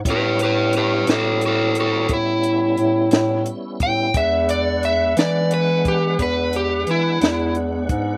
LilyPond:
<<
  \new Staff \with { instrumentName = "Electric slide guitar" } { \time 12/8 \key a \major \tempo 4. = 59 <g' b'>8 <g' b'>8 <g' b'>8 <fis' a'>8 <fis' a'>8 <fis' a'>8 e'2 r8 g''8 | e''8 d''8 e''8 d''8 b'8 g'8 b'8 g'8 e'4 r4 | }
  \new Staff \with { instrumentName = "Tonewheel organ" } { \time 12/8 \key a \major <g b cis' e'>1. | <gis b d' fis''>1. | }
  \new Staff \with { instrumentName = "Bass clarinet" } { \clef bass \time 12/8 \key a \major a,4. a,4. a,4 a,8 a,8 r8 a,8 | e,4. e4. e,4 e8 e,4 gis,8 | }
  \new DrumStaff \with { instrumentName = "Drums" } \drummode { \time 12/8 <hh bd>8 hh8 <hh sn>8 <hh sn>8 hh8 hh8 <hh bd>8 hh8 hh8 <hh sn>8 hh8 <hh bd>8 | <hh bd>8 hh8 hh8 <hh sn>8 hh8 <hh bd>8 <hh bd>8 hh8 hh8 <hh sn>8 hh8 <hh bd>8 | }
>>